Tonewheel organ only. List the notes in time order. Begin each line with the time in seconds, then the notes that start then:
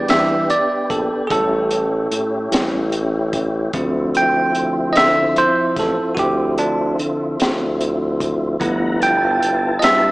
Already playing: B3 D4 G4
1.30 C#4 E4 G4
3.74 F3 C4 E4
8.60 B3 E4 F#5 A#5
8.99 B3 E4 F4 A5